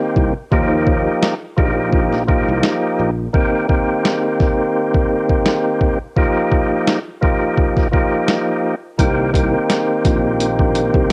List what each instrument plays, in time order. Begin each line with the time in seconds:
Already playing: tonewheel organ D#3 A#3 C4 G4
0.16 fretless electric bass C2, kick
0.51 fretless electric bass D#2, tonewheel organ F3 A#3 D#4 G4, kick
0.87 kick
1.23 snare
1.56 fretless electric bass A#1, tonewheel organ F3 A#3 D#4 G4, kick
1.93 kick
2.13 snare
2.27 tonewheel organ F3 A#3 D#4 G4, kick
2.48 fretless electric bass C2
2.63 snare
2.99 fretless electric bass A#1
3.33 tonewheel organ D#3 A#3 C4 G4, kick
3.68 tonewheel organ D#3 A#3 C4 G4, kick
4.05 snare
4.40 kick, snare
4.94 kick
5.29 kick
5.46 snare
5.81 kick
6.16 tonewheel organ F3 A#3 D#4 G4, kick
6.52 kick
6.87 snare
7.21 tonewheel organ F3 A#3 D#4 G4, kick
7.58 kick
7.77 kick, snare
7.92 tonewheel organ F3 A#3 D#4 G4, kick
8.28 snare
8.98 fretless electric bass C2, tonewheel organ D#3 A#3 C4 G4, kick, closed hi-hat
9.33 tonewheel organ D#3 A#3 C4 G4, kick, closed hi-hat
9.70 snare, closed hi-hat
10.05 fretless electric bass A#1, kick, snare, closed hi-hat
10.40 closed hi-hat
10.59 kick
10.75 closed hi-hat
10.94 fretless electric bass C2, kick